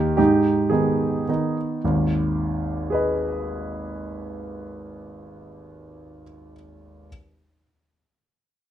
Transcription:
grand piano
Already playing: D#2 D#3 A#3 D#4 G4
0.17 G#2 D#4 G4
0.70 D#3 B3 D#4 G#4
1.29 D#3 B3 D#4
1.84 G#1 D#2
2.90 G#4 B4
2.94 D#5

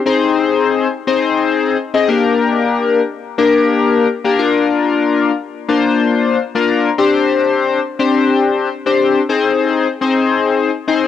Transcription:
analog polysynth
0.06 C4 D#4 G#4 C5
1.07 C4 D#4 G#4 C5
1.94 C4 D#4 G#4 D#5
2.08 A#3 D4 G4 A#4
3.38 A#3 D4 G4 A#4
4.24 A#3 D4 G4 A#4
4.39 A#3 D4 F4 A#4
5.69 A#3 D4 F4 C5
6.55 A#3 D4 F4 A#4
6.98 C4 D4 G4 C5
7.99 C4 D4 G4 C5
8.86 C4 D4 G4 C5
9.29 C4 D#4 G#4 C5
10.01 C4 D#4 G#4 C5
10.88 C4 D#4 G#4 C5

